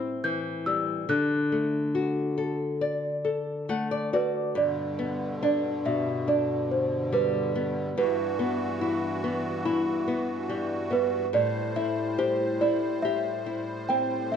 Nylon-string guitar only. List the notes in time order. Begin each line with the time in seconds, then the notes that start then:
Already playing: A2 G3 C4 E4
0.24 E3
0.67 G3
1.09 D3
1.52 A3
1.95 F#4
2.38 A4
2.81 D5
3.25 A4
3.69 A3 F#5
3.91 D5
4.13 F#4 D5
4.55 G2
4.99 B3
5.43 D4
5.85 B2
6.28 D4
7.12 G3
7.55 B3
7.98 G2
8.39 B3
8.81 E4
9.24 B3
9.65 E4
10.08 B3
10.49 G3
10.91 B3
11.33 A2
11.76 E4
12.19 G4
12.61 E4
13.05 G4
13.46 E4
13.90 C4